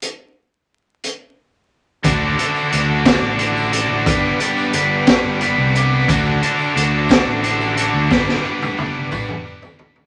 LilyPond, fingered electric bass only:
\new Staff \with { instrumentName = "Fingered electric bass" } { \clef bass \time 6/8 \key d \major \tempo 4. = 59 r2. | d,8 r8 d,8. a,,4 a,,16 | g,,8 r8 g,,8 r16 g,,8 c,8. | d,8 r8 d,8. a,,4 d,16 |
g,,8 r8 g,,8 r16 g,,8 g,,8. | }